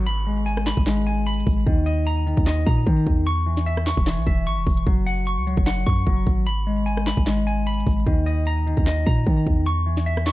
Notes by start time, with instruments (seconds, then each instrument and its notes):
Already playing: 808-style bass G#1, downlifter
0.07 clean electric guitar B5, closed hi-hat
0.27 clean electric guitar G#3
0.46 clean electric guitar G#5, closed hi-hat
0.57 cross-stick
0.67 clean electric guitar B5, snare, clap, closed hi-hat
0.77 808-style bass G#1, kick
0.86 clean electric guitar G#3, snare, clap, closed hi-hat
0.92 closed hi-hat
0.97 closed hi-hat
1.02 closed hi-hat
1.07 clean electric guitar G#5, closed hi-hat
1.27 clean electric guitar B5, closed hi-hat
1.33 closed hi-hat
1.40 closed hi-hat
1.47 808-style bass G#1, kick, closed hi-hat, open hi-hat
1.53 closed hi-hat
1.60 closed hi-hat
1.66 808-style bass D#2, clean electric guitar D#3, kick, closed hi-hat
1.86 clean electric guitar D#5, closed hi-hat
2.07 clean electric guitar A#5, closed hi-hat
2.27 clean electric guitar D#3, closed hi-hat
2.37 808-style bass D#2, kick
2.46 clean electric guitar D#5, snare, clap, closed hi-hat
2.67 808-style bass A#2, clean electric guitar A#5, kick, closed hi-hat
2.86 808-style bass D#3, clean electric guitar D#3, kick, closed hi-hat
3.07 808-style bass E2, kick, closed hi-hat
3.27 clean electric guitar C#6, closed hi-hat
3.46 clean electric guitar E3
3.57 snare
3.66 clean electric guitar E5, closed hi-hat
3.77 cross-stick
3.87 clean electric guitar C#6, snare, clap, closed hi-hat
3.93 808-style bass E1, kick, closed hi-hat
4.00 closed hi-hat
4.07 clean electric guitar E3, snare, clap, closed hi-hat
4.12 closed hi-hat
4.17 808-style bass B1, closed hi-hat
4.22 closed hi-hat
4.27 808-style bass E1, clean electric guitar E5, kick, closed hi-hat
4.46 808-style bass G#1, clean electric guitar C#6, closed hi-hat
4.57 808-style bass E1
4.67 808-style bass E1, kick, closed hi-hat, open hi-hat
4.77 closed hi-hat
4.87 808-style bass F#1, clean electric guitar F#3, kick, closed hi-hat
5.06 clean electric guitar F#5, closed hi-hat
5.27 clean electric guitar C#6, closed hi-hat
5.37 808-style bass C#2
5.47 clean electric guitar F#3, closed hi-hat
5.57 808-style bass F#1, kick
5.66 clean electric guitar F#5, snare, clap, closed hi-hat
5.86 808-style bass F#2, clean electric guitar C#6, kick, closed hi-hat
6.06 808-style bass F#1, clean electric guitar F#3, kick, closed hi-hat
6.27 808-style bass G#1, kick, closed hi-hat
6.47 clean electric guitar B5, closed hi-hat
6.67 clean electric guitar G#3
6.86 clean electric guitar G#5, closed hi-hat
6.97 cross-stick
7.07 clean electric guitar B5, snare, clap, closed hi-hat
7.17 808-style bass G#1, kick
7.26 clean electric guitar G#3, snare, clap, closed hi-hat
7.32 closed hi-hat
7.37 closed hi-hat
7.42 closed hi-hat
7.47 clean electric guitar G#5, closed hi-hat
7.67 clean electric guitar B5, closed hi-hat
7.73 closed hi-hat
7.80 closed hi-hat
7.87 808-style bass G#1, kick, closed hi-hat, open hi-hat
7.93 closed hi-hat
8.00 closed hi-hat
8.06 808-style bass D#2, clean electric guitar D#3, kick, closed hi-hat
8.26 clean electric guitar D#5, closed hi-hat
8.47 clean electric guitar A#5, closed hi-hat
8.67 clean electric guitar D#3, closed hi-hat
8.77 808-style bass D#2, kick
8.86 clean electric guitar D#5, snare, clap, closed hi-hat
9.07 808-style bass A#2, clean electric guitar A#5, kick, closed hi-hat
9.26 808-style bass D#3, clean electric guitar D#3, kick, closed hi-hat
9.47 808-style bass E2, kick, closed hi-hat
9.66 clean electric guitar C#6, closed hi-hat
9.86 clean electric guitar E3
9.97 snare
10.06 clean electric guitar E5, closed hi-hat
10.17 cross-stick
10.26 clean electric guitar C#6, snare, clap, closed hi-hat